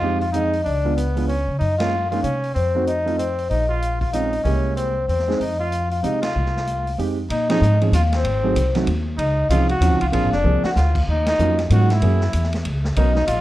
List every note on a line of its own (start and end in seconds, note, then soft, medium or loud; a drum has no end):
0.00 0.61 F2 medium
0.00 0.19 G#3 medium
0.00 0.19 C4 medium
0.00 0.20 D#4 medium
0.00 0.19 F4 medium
0.00 0.20 G4 medium
0.00 0.20 F5 medium
0.21 0.32 F4 medium
0.21 0.34 F5 medium
0.21 open hi-hat soft
0.32 0.51 G#3 soft
0.32 0.51 C4 soft
0.32 0.62 D#4 medium
0.32 0.52 D#4 soft
0.32 0.52 G#4 medium
0.32 0.66 D#5 medium
0.32 closed hi-hat soft
0.53 open hi-hat soft
0.64 1.44 C#2 medium
0.64 0.94 D4 medium
0.64 0.94 D5 medium
0.64 open hi-hat soft
0.85 0.96 G#3 medium
0.85 0.96 B3 medium
0.85 0.96 D4 medium
0.85 0.96 F4 medium
0.96 1.26 B3 medium
0.96 1.30 B4 medium
0.96 closed hi-hat soft
1.16 1.27 G#3 medium
1.16 1.28 B3 medium
1.16 1.28 D4 medium
1.16 1.28 F4 medium
1.16 open hi-hat soft
1.28 1.58 C#4 medium
1.28 1.61 C#5 medium
1.28 open hi-hat soft
1.48 1.60 C#3 medium
1.59 2.20 F#2 medium
1.59 1.78 D#4 medium
1.59 1.78 D#5 medium
1.59 open hi-hat soft
1.78 1.91 G#3 medium
1.78 1.91 A#3 medium
1.78 1.91 C#4 medium
1.78 2.08 F4 medium
1.78 1.92 F4 medium
1.78 2.09 F5 medium
1.78 snare medium
1.78 ride medium
2.10 2.23 G#3 medium
2.10 2.23 A#3 medium
2.10 2.23 C#4 medium
2.10 2.23 D#4 medium
2.10 2.22 F4 medium
2.10 2.22 F5 medium
2.10 open hi-hat soft
2.23 2.53 C3 medium
2.23 2.53 C#4 medium
2.23 2.56 C#5 medium
2.23 closed hi-hat soft
2.44 open hi-hat soft
2.54 3.47 F2 medium
2.54 2.84 C4 medium
2.54 2.88 C5 medium
2.54 open hi-hat soft
2.75 2.86 A3 medium
2.75 2.86 C4 medium
2.75 2.87 D#4 medium
2.75 2.87 F#4 medium
2.87 3.17 D#4 medium
2.87 3.20 D#5 medium
2.87 closed hi-hat soft
3.06 3.17 A3 medium
3.06 3.17 C4 medium
3.06 3.18 D#4 medium
3.06 3.18 F4 medium
3.06 open hi-hat soft
3.17 3.48 C4 medium
3.17 3.51 C5 medium
3.17 closed hi-hat soft
3.38 open hi-hat soft
3.50 4.41 A#1 medium
3.50 3.68 D#4 medium
3.50 3.68 D#5 medium
3.50 open hi-hat soft
3.68 3.99 F4 medium
3.82 closed hi-hat soft
4.01 4.12 F4 medium
4.01 4.13 F5 medium
4.01 kick soft
4.01 open hi-hat soft
4.13 4.31 G#3 medium
4.13 4.31 C4 medium
4.13 4.31 C#4 medium
4.13 4.43 D#4 medium
4.13 4.32 F4 medium
4.13 4.46 D#5 medium
4.13 closed hi-hat medium
4.33 open hi-hat soft
4.44 5.04 C2 medium
4.44 4.92 G#3 medium
4.44 4.92 A#3 medium
4.44 4.74 C#4 medium
4.44 4.93 E4 medium
4.44 4.93 G4 medium
4.44 4.75 C#5 medium
4.44 open hi-hat soft
4.76 5.06 C4 medium
4.76 5.08 C5 medium
4.76 closed hi-hat soft
5.08 5.38 E2 medium
5.08 5.38 C4 medium
5.08 5.38 C5 medium
5.08 open hi-hat soft
5.19 snare soft
5.28 5.39 G#3 medium
5.28 5.39 C4 medium
5.28 5.39 D#4 medium
5.28 5.39 G#4 medium
5.28 snare soft
5.40 5.99 F2 medium
5.40 5.58 D#4 medium
5.40 5.60 D#5 medium
5.40 open hi-hat soft
5.59 5.89 F4 medium
5.59 5.91 F5 medium
5.72 closed hi-hat soft
5.90 6.02 F4 medium
5.90 6.03 F5 medium
5.90 open hi-hat soft
6.03 6.33 C3 medium
6.03 6.20 G#3 medium
6.03 6.21 C4 medium
6.03 6.21 D#4 medium
6.03 6.21 G4 medium
6.03 6.24 D#5 medium
6.03 closed hi-hat soft
6.22 6.93 F4 medium
6.22 6.95 F5 medium
6.22 snare medium
6.22 ride medium
6.35 6.94 C2 medium
6.46 snare soft
6.57 snare soft
6.67 closed hi-hat soft
6.87 open hi-hat soft
6.98 7.28 F2 medium
6.98 7.15 G#3 medium
6.98 7.15 C4 medium
6.98 7.16 D#4 medium
6.98 7.16 G4 medium
6.98 open hi-hat soft
7.30 7.60 A#2 medium
7.30 7.47 D#4 medium
7.30 7.50 D#5 medium
7.30 ride medium
7.49 7.60 F3 medium
7.49 7.60 C4 medium
7.49 7.60 C#4 medium
7.49 7.79 D#4 medium
7.49 7.60 D#4 medium
7.49 7.61 G#4 medium
7.49 snare medium
7.49 ride medium
7.61 7.91 G#2 medium
7.61 hi-hat pedal medium
7.81 7.91 F3 medium
7.81 7.92 C4 medium
7.81 7.92 C#4 medium
7.81 7.92 D#4 medium
7.81 7.92 G#4 medium
7.81 ride soft
7.92 8.23 D#2 medium
7.92 8.02 F4 medium
7.92 8.04 F5 loud
7.92 hi-hat pedal medium
7.92 ride medium
8.12 8.72 C4 medium
8.12 8.72 C5 medium
8.12 snare medium
8.12 ride soft
8.23 8.54 G#1 medium
8.23 ride medium
8.43 8.54 F#3 medium
8.43 8.54 A3 medium
8.43 8.55 C4 medium
8.43 8.55 D#4 medium
8.43 8.55 G#4 medium
8.55 8.86 C2 medium
8.55 hi-hat pedal medium
8.55 ride medium
8.75 8.86 F#3 medium
8.75 8.86 A3 medium
8.75 8.86 C4 medium
8.75 8.86 D#4 medium
8.75 8.86 F#4 medium
8.75 snare soft
8.75 ride soft
8.87 9.17 D#2 medium
8.87 ride medium
9.18 9.48 C#2 medium
9.18 9.47 D#4 medium
9.18 9.51 D#5 medium
9.18 ride medium
9.49 9.80 C2 medium
9.49 9.67 F3 medium
9.49 9.67 C4 medium
9.49 9.68 C#4 medium
9.49 9.68 D#4 medium
9.49 9.68 F4 medium
9.49 9.68 G#4 medium
9.49 9.68 F5 medium
9.49 hi-hat pedal medium
9.49 ride medium
9.69 9.99 F#4 medium
9.69 10.02 F#5 loud
9.69 ride soft
9.80 9.91 D#2 medium
9.80 9.99 F3 medium
9.80 9.98 C4 medium
9.80 9.99 C#4 medium
9.80 9.99 D#4 medium
9.80 9.99 F4 medium
9.80 hi-hat pedal medium
9.80 ride medium
9.91 10.01 C#2 medium
10.01 10.12 C2 medium
10.01 10.06 F4 medium
10.01 10.07 F5 medium
10.01 ride soft
10.12 10.23 A#1 medium
10.12 10.30 F3 medium
10.12 10.30 A#3 medium
10.12 10.30 C4 medium
10.12 10.30 D4 medium
10.12 10.31 F4 medium
10.12 10.30 G#4 medium
10.12 10.31 F5 loud
10.12 ride medium
10.23 10.32 G#1 medium
10.32 10.43 F1 medium
10.32 10.61 D4 medium
10.32 10.62 D5 medium
10.32 snare soft
10.44 10.62 C2 medium
10.44 10.61 F3 medium
10.44 10.62 A#3 medium
10.44 10.62 C4 medium
10.44 10.62 D4 medium
10.44 10.62 G#4 medium
10.64 10.70 F#4 medium
10.64 10.69 F#5 medium
10.64 muted upright bass stroke soft
10.64 snare medium
10.76 11.06 D2 medium
10.76 11.00 F4 medium
10.76 11.00 F5 medium
10.76 snare medium
10.76 hi-hat pedal medium
10.95 kick medium
10.95 crash medium
11.08 11.38 D#2 medium
11.08 11.26 D#4 medium
11.08 11.26 D#5 medium
11.26 11.57 D#4 medium
11.26 11.57 D#5 medium
11.26 snare medium
11.26 ride medium
11.38 11.70 F2 medium
11.38 11.56 F#3 medium
11.38 11.57 A#3 medium
11.38 11.57 C#4 medium
11.38 11.57 D#4 medium
11.38 11.57 F4 medium
11.38 hi-hat pedal medium
11.58 snare soft
11.58 ride soft
11.70 12.01 G#2 loud
11.70 11.88 F#3 medium
11.70 11.88 A#3 medium
11.70 11.88 C#4 medium
11.70 11.88 D#4 medium
11.70 11.88 F4 medium
11.70 11.89 F#4 medium
11.70 11.91 F#5 medium
11.70 hi-hat pedal medium
11.70 ride medium
11.90 12.50 E4 medium
11.90 12.49 E5 medium
11.90 snare medium
11.90 ride soft
12.02 12.33 F#2 medium
12.02 12.19 F#3 medium
12.02 12.19 A#3 medium
12.02 12.20 C#4 medium
12.02 12.20 E4 medium
12.02 12.20 G#4 medium
12.02 ride medium
12.21 snare medium
12.33 12.64 E2 medium
12.33 hi-hat pedal medium
12.33 ride medium
12.44 snare soft
12.53 snare soft
12.53 ride soft
12.65 12.96 C#2 medium
12.65 ride medium
12.84 snare medium
12.96 13.27 B1 medium
12.96 13.14 F#3 medium
12.96 13.14 B3 medium
12.96 13.14 C#4 medium
12.96 13.14 D#4 medium
12.96 13.15 A#4 medium
12.96 13.15 D#5 loud
12.96 ride medium
13.15 13.26 D#4 medium
13.15 13.27 D#5 medium
13.15 snare soft
13.27 13.41 A#1 medium
13.27 13.41 F4 medium
13.27 13.41 F5 loud
13.27 hi-hat pedal medium
13.27 ride medium